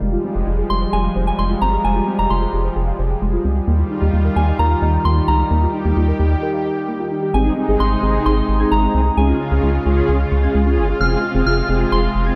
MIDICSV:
0, 0, Header, 1, 6, 480
1, 0, Start_track
1, 0, Key_signature, -4, "minor"
1, 0, Tempo, 458015
1, 14, Time_signature, 4, 2, 24, 8
1, 12947, End_track
2, 0, Start_track
2, 0, Title_t, "Synth bell"
2, 0, Program_c, 0, 98
2, 733, Note_on_c, 0, 84, 99
2, 975, Note_on_c, 0, 80, 88
2, 981, Note_off_c, 0, 84, 0
2, 1309, Note_off_c, 0, 80, 0
2, 1334, Note_on_c, 0, 80, 83
2, 1454, Note_on_c, 0, 84, 94
2, 1457, Note_off_c, 0, 80, 0
2, 1693, Note_on_c, 0, 82, 88
2, 1701, Note_off_c, 0, 84, 0
2, 1933, Note_on_c, 0, 80, 85
2, 1940, Note_off_c, 0, 82, 0
2, 2293, Note_on_c, 0, 82, 86
2, 2304, Note_off_c, 0, 80, 0
2, 2413, Note_on_c, 0, 84, 83
2, 2417, Note_off_c, 0, 82, 0
2, 3332, Note_off_c, 0, 84, 0
2, 4573, Note_on_c, 0, 80, 76
2, 4812, Note_on_c, 0, 82, 91
2, 4820, Note_off_c, 0, 80, 0
2, 5293, Note_on_c, 0, 84, 100
2, 5307, Note_off_c, 0, 82, 0
2, 5516, Note_off_c, 0, 84, 0
2, 5532, Note_on_c, 0, 82, 88
2, 5979, Note_off_c, 0, 82, 0
2, 7694, Note_on_c, 0, 80, 92
2, 8140, Note_off_c, 0, 80, 0
2, 8175, Note_on_c, 0, 84, 103
2, 8643, Note_off_c, 0, 84, 0
2, 8656, Note_on_c, 0, 84, 102
2, 9134, Note_on_c, 0, 82, 91
2, 9149, Note_off_c, 0, 84, 0
2, 9614, Note_on_c, 0, 80, 79
2, 9628, Note_off_c, 0, 82, 0
2, 11252, Note_off_c, 0, 80, 0
2, 11535, Note_on_c, 0, 89, 102
2, 11981, Note_off_c, 0, 89, 0
2, 12015, Note_on_c, 0, 89, 105
2, 12495, Note_on_c, 0, 84, 99
2, 12509, Note_off_c, 0, 89, 0
2, 12941, Note_off_c, 0, 84, 0
2, 12947, End_track
3, 0, Start_track
3, 0, Title_t, "Synth arpeggio sound"
3, 0, Program_c, 1, 84
3, 13, Note_on_c, 1, 56, 90
3, 76, Note_off_c, 1, 56, 0
3, 134, Note_on_c, 1, 65, 77
3, 196, Note_off_c, 1, 65, 0
3, 254, Note_on_c, 1, 60, 77
3, 316, Note_off_c, 1, 60, 0
3, 374, Note_on_c, 1, 67, 82
3, 436, Note_off_c, 1, 67, 0
3, 494, Note_on_c, 1, 65, 86
3, 556, Note_off_c, 1, 65, 0
3, 614, Note_on_c, 1, 68, 77
3, 676, Note_off_c, 1, 68, 0
3, 733, Note_on_c, 1, 67, 83
3, 796, Note_off_c, 1, 67, 0
3, 853, Note_on_c, 1, 72, 78
3, 916, Note_off_c, 1, 72, 0
3, 973, Note_on_c, 1, 68, 94
3, 1035, Note_off_c, 1, 68, 0
3, 1093, Note_on_c, 1, 77, 82
3, 1155, Note_off_c, 1, 77, 0
3, 1213, Note_on_c, 1, 72, 85
3, 1275, Note_off_c, 1, 72, 0
3, 1332, Note_on_c, 1, 79, 87
3, 1395, Note_off_c, 1, 79, 0
3, 1453, Note_on_c, 1, 56, 84
3, 1515, Note_off_c, 1, 56, 0
3, 1573, Note_on_c, 1, 65, 71
3, 1635, Note_off_c, 1, 65, 0
3, 1692, Note_on_c, 1, 60, 79
3, 1755, Note_off_c, 1, 60, 0
3, 1812, Note_on_c, 1, 67, 77
3, 1875, Note_off_c, 1, 67, 0
3, 1932, Note_on_c, 1, 56, 93
3, 1994, Note_off_c, 1, 56, 0
3, 2052, Note_on_c, 1, 65, 76
3, 2114, Note_off_c, 1, 65, 0
3, 2171, Note_on_c, 1, 60, 76
3, 2234, Note_off_c, 1, 60, 0
3, 2292, Note_on_c, 1, 67, 80
3, 2354, Note_off_c, 1, 67, 0
3, 2412, Note_on_c, 1, 65, 87
3, 2475, Note_off_c, 1, 65, 0
3, 2532, Note_on_c, 1, 68, 81
3, 2595, Note_off_c, 1, 68, 0
3, 2652, Note_on_c, 1, 67, 81
3, 2715, Note_off_c, 1, 67, 0
3, 2772, Note_on_c, 1, 72, 80
3, 2835, Note_off_c, 1, 72, 0
3, 2892, Note_on_c, 1, 68, 95
3, 2955, Note_off_c, 1, 68, 0
3, 3012, Note_on_c, 1, 77, 82
3, 3075, Note_off_c, 1, 77, 0
3, 3133, Note_on_c, 1, 72, 85
3, 3195, Note_off_c, 1, 72, 0
3, 3252, Note_on_c, 1, 79, 86
3, 3315, Note_off_c, 1, 79, 0
3, 3372, Note_on_c, 1, 56, 81
3, 3435, Note_off_c, 1, 56, 0
3, 3492, Note_on_c, 1, 65, 74
3, 3555, Note_off_c, 1, 65, 0
3, 3612, Note_on_c, 1, 60, 81
3, 3675, Note_off_c, 1, 60, 0
3, 3733, Note_on_c, 1, 67, 77
3, 3795, Note_off_c, 1, 67, 0
3, 3853, Note_on_c, 1, 58, 95
3, 3915, Note_off_c, 1, 58, 0
3, 3973, Note_on_c, 1, 65, 76
3, 4036, Note_off_c, 1, 65, 0
3, 4093, Note_on_c, 1, 63, 75
3, 4156, Note_off_c, 1, 63, 0
3, 4213, Note_on_c, 1, 67, 81
3, 4276, Note_off_c, 1, 67, 0
3, 4333, Note_on_c, 1, 65, 86
3, 4395, Note_off_c, 1, 65, 0
3, 4453, Note_on_c, 1, 70, 78
3, 4516, Note_off_c, 1, 70, 0
3, 4573, Note_on_c, 1, 67, 79
3, 4636, Note_off_c, 1, 67, 0
3, 4693, Note_on_c, 1, 75, 82
3, 4756, Note_off_c, 1, 75, 0
3, 4813, Note_on_c, 1, 70, 96
3, 4876, Note_off_c, 1, 70, 0
3, 4933, Note_on_c, 1, 77, 84
3, 4995, Note_off_c, 1, 77, 0
3, 5053, Note_on_c, 1, 75, 87
3, 5116, Note_off_c, 1, 75, 0
3, 5173, Note_on_c, 1, 79, 92
3, 5235, Note_off_c, 1, 79, 0
3, 5294, Note_on_c, 1, 58, 82
3, 5356, Note_off_c, 1, 58, 0
3, 5414, Note_on_c, 1, 65, 73
3, 5476, Note_off_c, 1, 65, 0
3, 5533, Note_on_c, 1, 63, 77
3, 5596, Note_off_c, 1, 63, 0
3, 5653, Note_on_c, 1, 67, 76
3, 5716, Note_off_c, 1, 67, 0
3, 5774, Note_on_c, 1, 58, 93
3, 5836, Note_off_c, 1, 58, 0
3, 5894, Note_on_c, 1, 65, 75
3, 5956, Note_off_c, 1, 65, 0
3, 6013, Note_on_c, 1, 63, 74
3, 6076, Note_off_c, 1, 63, 0
3, 6134, Note_on_c, 1, 67, 80
3, 6196, Note_off_c, 1, 67, 0
3, 6254, Note_on_c, 1, 65, 86
3, 6316, Note_off_c, 1, 65, 0
3, 6373, Note_on_c, 1, 70, 80
3, 6435, Note_off_c, 1, 70, 0
3, 6494, Note_on_c, 1, 67, 84
3, 6556, Note_off_c, 1, 67, 0
3, 6613, Note_on_c, 1, 75, 77
3, 6676, Note_off_c, 1, 75, 0
3, 6734, Note_on_c, 1, 70, 97
3, 6796, Note_off_c, 1, 70, 0
3, 6853, Note_on_c, 1, 77, 81
3, 6915, Note_off_c, 1, 77, 0
3, 6974, Note_on_c, 1, 75, 89
3, 7036, Note_off_c, 1, 75, 0
3, 7094, Note_on_c, 1, 79, 90
3, 7156, Note_off_c, 1, 79, 0
3, 7213, Note_on_c, 1, 58, 80
3, 7276, Note_off_c, 1, 58, 0
3, 7334, Note_on_c, 1, 65, 70
3, 7396, Note_off_c, 1, 65, 0
3, 7453, Note_on_c, 1, 63, 77
3, 7516, Note_off_c, 1, 63, 0
3, 7573, Note_on_c, 1, 67, 78
3, 7636, Note_off_c, 1, 67, 0
3, 7694, Note_on_c, 1, 56, 96
3, 7756, Note_off_c, 1, 56, 0
3, 7814, Note_on_c, 1, 63, 76
3, 7876, Note_off_c, 1, 63, 0
3, 7934, Note_on_c, 1, 60, 75
3, 7996, Note_off_c, 1, 60, 0
3, 8053, Note_on_c, 1, 68, 83
3, 8116, Note_off_c, 1, 68, 0
3, 8173, Note_on_c, 1, 63, 87
3, 8236, Note_off_c, 1, 63, 0
3, 8293, Note_on_c, 1, 80, 84
3, 8355, Note_off_c, 1, 80, 0
3, 8412, Note_on_c, 1, 68, 84
3, 8475, Note_off_c, 1, 68, 0
3, 8532, Note_on_c, 1, 84, 82
3, 8595, Note_off_c, 1, 84, 0
3, 8653, Note_on_c, 1, 80, 101
3, 8715, Note_off_c, 1, 80, 0
3, 8772, Note_on_c, 1, 87, 86
3, 8834, Note_off_c, 1, 87, 0
3, 8892, Note_on_c, 1, 84, 88
3, 8955, Note_off_c, 1, 84, 0
3, 9012, Note_on_c, 1, 92, 89
3, 9075, Note_off_c, 1, 92, 0
3, 9133, Note_on_c, 1, 56, 84
3, 9195, Note_off_c, 1, 56, 0
3, 9252, Note_on_c, 1, 63, 74
3, 9315, Note_off_c, 1, 63, 0
3, 9372, Note_on_c, 1, 60, 80
3, 9435, Note_off_c, 1, 60, 0
3, 9493, Note_on_c, 1, 68, 78
3, 9555, Note_off_c, 1, 68, 0
3, 9613, Note_on_c, 1, 56, 97
3, 9675, Note_off_c, 1, 56, 0
3, 9733, Note_on_c, 1, 65, 78
3, 9795, Note_off_c, 1, 65, 0
3, 9853, Note_on_c, 1, 61, 77
3, 9915, Note_off_c, 1, 61, 0
3, 9973, Note_on_c, 1, 68, 81
3, 10035, Note_off_c, 1, 68, 0
3, 10093, Note_on_c, 1, 65, 88
3, 10155, Note_off_c, 1, 65, 0
3, 10213, Note_on_c, 1, 80, 79
3, 10275, Note_off_c, 1, 80, 0
3, 10333, Note_on_c, 1, 68, 81
3, 10395, Note_off_c, 1, 68, 0
3, 10453, Note_on_c, 1, 85, 82
3, 10515, Note_off_c, 1, 85, 0
3, 10573, Note_on_c, 1, 80, 96
3, 10635, Note_off_c, 1, 80, 0
3, 10693, Note_on_c, 1, 89, 86
3, 10755, Note_off_c, 1, 89, 0
3, 10813, Note_on_c, 1, 85, 92
3, 10876, Note_off_c, 1, 85, 0
3, 10933, Note_on_c, 1, 92, 92
3, 10996, Note_off_c, 1, 92, 0
3, 11054, Note_on_c, 1, 56, 80
3, 11116, Note_off_c, 1, 56, 0
3, 11174, Note_on_c, 1, 65, 73
3, 11236, Note_off_c, 1, 65, 0
3, 11294, Note_on_c, 1, 61, 81
3, 11356, Note_off_c, 1, 61, 0
3, 11413, Note_on_c, 1, 68, 78
3, 11476, Note_off_c, 1, 68, 0
3, 11534, Note_on_c, 1, 56, 94
3, 11596, Note_off_c, 1, 56, 0
3, 11653, Note_on_c, 1, 65, 80
3, 11716, Note_off_c, 1, 65, 0
3, 11774, Note_on_c, 1, 60, 76
3, 11836, Note_off_c, 1, 60, 0
3, 11894, Note_on_c, 1, 68, 80
3, 11956, Note_off_c, 1, 68, 0
3, 12014, Note_on_c, 1, 65, 86
3, 12076, Note_off_c, 1, 65, 0
3, 12133, Note_on_c, 1, 80, 83
3, 12195, Note_off_c, 1, 80, 0
3, 12253, Note_on_c, 1, 68, 86
3, 12315, Note_off_c, 1, 68, 0
3, 12373, Note_on_c, 1, 84, 81
3, 12435, Note_off_c, 1, 84, 0
3, 12492, Note_on_c, 1, 80, 98
3, 12555, Note_off_c, 1, 80, 0
3, 12612, Note_on_c, 1, 89, 82
3, 12675, Note_off_c, 1, 89, 0
3, 12733, Note_on_c, 1, 84, 86
3, 12795, Note_off_c, 1, 84, 0
3, 12853, Note_on_c, 1, 92, 94
3, 12915, Note_off_c, 1, 92, 0
3, 12947, End_track
4, 0, Start_track
4, 0, Title_t, "Analog polysynth"
4, 0, Program_c, 2, 90
4, 7694, Note_on_c, 2, 60, 75
4, 7694, Note_on_c, 2, 63, 70
4, 7694, Note_on_c, 2, 68, 83
4, 7884, Note_off_c, 2, 60, 0
4, 7884, Note_off_c, 2, 63, 0
4, 7884, Note_off_c, 2, 68, 0
4, 8053, Note_on_c, 2, 60, 74
4, 8053, Note_on_c, 2, 63, 66
4, 8053, Note_on_c, 2, 68, 82
4, 8244, Note_off_c, 2, 60, 0
4, 8244, Note_off_c, 2, 63, 0
4, 8244, Note_off_c, 2, 68, 0
4, 8413, Note_on_c, 2, 60, 77
4, 8413, Note_on_c, 2, 63, 67
4, 8413, Note_on_c, 2, 68, 83
4, 8731, Note_off_c, 2, 60, 0
4, 8731, Note_off_c, 2, 63, 0
4, 8731, Note_off_c, 2, 68, 0
4, 9013, Note_on_c, 2, 60, 75
4, 9013, Note_on_c, 2, 68, 85
4, 9014, Note_on_c, 2, 63, 67
4, 9141, Note_off_c, 2, 60, 0
4, 9141, Note_off_c, 2, 63, 0
4, 9141, Note_off_c, 2, 68, 0
4, 9253, Note_on_c, 2, 60, 75
4, 9253, Note_on_c, 2, 63, 69
4, 9253, Note_on_c, 2, 68, 81
4, 9444, Note_off_c, 2, 60, 0
4, 9444, Note_off_c, 2, 63, 0
4, 9444, Note_off_c, 2, 68, 0
4, 9613, Note_on_c, 2, 65, 68
4, 9614, Note_on_c, 2, 61, 76
4, 9614, Note_on_c, 2, 68, 84
4, 9804, Note_off_c, 2, 61, 0
4, 9804, Note_off_c, 2, 65, 0
4, 9804, Note_off_c, 2, 68, 0
4, 9973, Note_on_c, 2, 61, 76
4, 9973, Note_on_c, 2, 68, 83
4, 9974, Note_on_c, 2, 65, 68
4, 10164, Note_off_c, 2, 61, 0
4, 10164, Note_off_c, 2, 65, 0
4, 10164, Note_off_c, 2, 68, 0
4, 10333, Note_on_c, 2, 61, 90
4, 10334, Note_on_c, 2, 65, 82
4, 10334, Note_on_c, 2, 68, 98
4, 10651, Note_off_c, 2, 61, 0
4, 10651, Note_off_c, 2, 65, 0
4, 10651, Note_off_c, 2, 68, 0
4, 10933, Note_on_c, 2, 65, 86
4, 10934, Note_on_c, 2, 61, 92
4, 10934, Note_on_c, 2, 68, 101
4, 11060, Note_off_c, 2, 65, 0
4, 11061, Note_off_c, 2, 61, 0
4, 11061, Note_off_c, 2, 68, 0
4, 11174, Note_on_c, 2, 61, 88
4, 11174, Note_on_c, 2, 65, 81
4, 11174, Note_on_c, 2, 68, 97
4, 11364, Note_off_c, 2, 61, 0
4, 11364, Note_off_c, 2, 65, 0
4, 11364, Note_off_c, 2, 68, 0
4, 11533, Note_on_c, 2, 60, 76
4, 11533, Note_on_c, 2, 65, 69
4, 11533, Note_on_c, 2, 68, 82
4, 11724, Note_off_c, 2, 60, 0
4, 11724, Note_off_c, 2, 65, 0
4, 11724, Note_off_c, 2, 68, 0
4, 11893, Note_on_c, 2, 60, 75
4, 11893, Note_on_c, 2, 65, 69
4, 11893, Note_on_c, 2, 68, 84
4, 12084, Note_off_c, 2, 60, 0
4, 12084, Note_off_c, 2, 65, 0
4, 12084, Note_off_c, 2, 68, 0
4, 12253, Note_on_c, 2, 60, 75
4, 12253, Note_on_c, 2, 65, 70
4, 12254, Note_on_c, 2, 68, 81
4, 12571, Note_off_c, 2, 60, 0
4, 12571, Note_off_c, 2, 65, 0
4, 12571, Note_off_c, 2, 68, 0
4, 12853, Note_on_c, 2, 60, 75
4, 12853, Note_on_c, 2, 65, 72
4, 12853, Note_on_c, 2, 68, 84
4, 12947, Note_off_c, 2, 60, 0
4, 12947, Note_off_c, 2, 65, 0
4, 12947, Note_off_c, 2, 68, 0
4, 12947, End_track
5, 0, Start_track
5, 0, Title_t, "Analog synth pad"
5, 0, Program_c, 3, 89
5, 14, Note_on_c, 3, 53, 73
5, 14, Note_on_c, 3, 55, 82
5, 14, Note_on_c, 3, 56, 67
5, 3815, Note_off_c, 3, 53, 0
5, 3815, Note_off_c, 3, 55, 0
5, 3815, Note_off_c, 3, 56, 0
5, 3854, Note_on_c, 3, 51, 74
5, 3854, Note_on_c, 3, 55, 69
5, 3854, Note_on_c, 3, 65, 79
5, 5754, Note_off_c, 3, 65, 0
5, 5774, Note_on_c, 3, 67, 85
5, 7655, Note_off_c, 3, 55, 0
5, 7656, Note_off_c, 3, 51, 0
5, 7675, Note_off_c, 3, 67, 0
5, 7695, Note_on_c, 3, 48, 76
5, 7695, Note_on_c, 3, 56, 69
5, 7695, Note_on_c, 3, 63, 85
5, 9595, Note_off_c, 3, 48, 0
5, 9595, Note_off_c, 3, 56, 0
5, 9595, Note_off_c, 3, 63, 0
5, 9614, Note_on_c, 3, 49, 75
5, 9614, Note_on_c, 3, 56, 70
5, 9614, Note_on_c, 3, 65, 82
5, 11515, Note_off_c, 3, 49, 0
5, 11534, Note_on_c, 3, 48, 78
5, 12947, Note_off_c, 3, 48, 0
5, 12947, Note_off_c, 3, 56, 0
5, 12947, Note_off_c, 3, 65, 0
5, 12947, End_track
6, 0, Start_track
6, 0, Title_t, "Analog synth bass"
6, 0, Program_c, 4, 38
6, 13, Note_on_c, 4, 29, 95
6, 181, Note_off_c, 4, 29, 0
6, 372, Note_on_c, 4, 29, 89
6, 457, Note_off_c, 4, 29, 0
6, 492, Note_on_c, 4, 29, 92
6, 661, Note_off_c, 4, 29, 0
6, 733, Note_on_c, 4, 29, 90
6, 901, Note_off_c, 4, 29, 0
6, 972, Note_on_c, 4, 29, 105
6, 1141, Note_off_c, 4, 29, 0
6, 1213, Note_on_c, 4, 29, 98
6, 1381, Note_off_c, 4, 29, 0
6, 1453, Note_on_c, 4, 29, 99
6, 1621, Note_off_c, 4, 29, 0
6, 1693, Note_on_c, 4, 31, 92
6, 1861, Note_off_c, 4, 31, 0
6, 1933, Note_on_c, 4, 29, 100
6, 2101, Note_off_c, 4, 29, 0
6, 2293, Note_on_c, 4, 29, 84
6, 2377, Note_off_c, 4, 29, 0
6, 2414, Note_on_c, 4, 29, 99
6, 2582, Note_off_c, 4, 29, 0
6, 2653, Note_on_c, 4, 29, 90
6, 2821, Note_off_c, 4, 29, 0
6, 2894, Note_on_c, 4, 29, 98
6, 3062, Note_off_c, 4, 29, 0
6, 3134, Note_on_c, 4, 29, 100
6, 3302, Note_off_c, 4, 29, 0
6, 3373, Note_on_c, 4, 29, 99
6, 3541, Note_off_c, 4, 29, 0
6, 3613, Note_on_c, 4, 37, 93
6, 3781, Note_off_c, 4, 37, 0
6, 3853, Note_on_c, 4, 39, 109
6, 4021, Note_off_c, 4, 39, 0
6, 4212, Note_on_c, 4, 39, 95
6, 4296, Note_off_c, 4, 39, 0
6, 4333, Note_on_c, 4, 39, 100
6, 4501, Note_off_c, 4, 39, 0
6, 4572, Note_on_c, 4, 39, 105
6, 4741, Note_off_c, 4, 39, 0
6, 4812, Note_on_c, 4, 39, 101
6, 4981, Note_off_c, 4, 39, 0
6, 5052, Note_on_c, 4, 39, 99
6, 5220, Note_off_c, 4, 39, 0
6, 5292, Note_on_c, 4, 39, 100
6, 5461, Note_off_c, 4, 39, 0
6, 5533, Note_on_c, 4, 37, 89
6, 5701, Note_off_c, 4, 37, 0
6, 5773, Note_on_c, 4, 39, 105
6, 5941, Note_off_c, 4, 39, 0
6, 6133, Note_on_c, 4, 39, 93
6, 6217, Note_off_c, 4, 39, 0
6, 6252, Note_on_c, 4, 39, 101
6, 6421, Note_off_c, 4, 39, 0
6, 6493, Note_on_c, 4, 39, 100
6, 6661, Note_off_c, 4, 39, 0
6, 7693, Note_on_c, 4, 32, 111
6, 7861, Note_off_c, 4, 32, 0
6, 8053, Note_on_c, 4, 32, 87
6, 8137, Note_off_c, 4, 32, 0
6, 8174, Note_on_c, 4, 32, 101
6, 8342, Note_off_c, 4, 32, 0
6, 8414, Note_on_c, 4, 32, 100
6, 8582, Note_off_c, 4, 32, 0
6, 8654, Note_on_c, 4, 32, 109
6, 8822, Note_off_c, 4, 32, 0
6, 8893, Note_on_c, 4, 32, 98
6, 9061, Note_off_c, 4, 32, 0
6, 9134, Note_on_c, 4, 32, 93
6, 9302, Note_off_c, 4, 32, 0
6, 9373, Note_on_c, 4, 36, 94
6, 9541, Note_off_c, 4, 36, 0
6, 9613, Note_on_c, 4, 37, 102
6, 9781, Note_off_c, 4, 37, 0
6, 9973, Note_on_c, 4, 37, 96
6, 10057, Note_off_c, 4, 37, 0
6, 10093, Note_on_c, 4, 37, 91
6, 10261, Note_off_c, 4, 37, 0
6, 10333, Note_on_c, 4, 37, 96
6, 10501, Note_off_c, 4, 37, 0
6, 10573, Note_on_c, 4, 37, 102
6, 10741, Note_off_c, 4, 37, 0
6, 10813, Note_on_c, 4, 37, 100
6, 10981, Note_off_c, 4, 37, 0
6, 11053, Note_on_c, 4, 37, 99
6, 11293, Note_on_c, 4, 31, 93
6, 11309, Note_off_c, 4, 37, 0
6, 11461, Note_off_c, 4, 31, 0
6, 11533, Note_on_c, 4, 29, 102
6, 11701, Note_off_c, 4, 29, 0
6, 11893, Note_on_c, 4, 29, 99
6, 11977, Note_off_c, 4, 29, 0
6, 12012, Note_on_c, 4, 29, 98
6, 12181, Note_off_c, 4, 29, 0
6, 12253, Note_on_c, 4, 29, 102
6, 12421, Note_off_c, 4, 29, 0
6, 12492, Note_on_c, 4, 29, 109
6, 12660, Note_off_c, 4, 29, 0
6, 12733, Note_on_c, 4, 29, 99
6, 12901, Note_off_c, 4, 29, 0
6, 12947, End_track
0, 0, End_of_file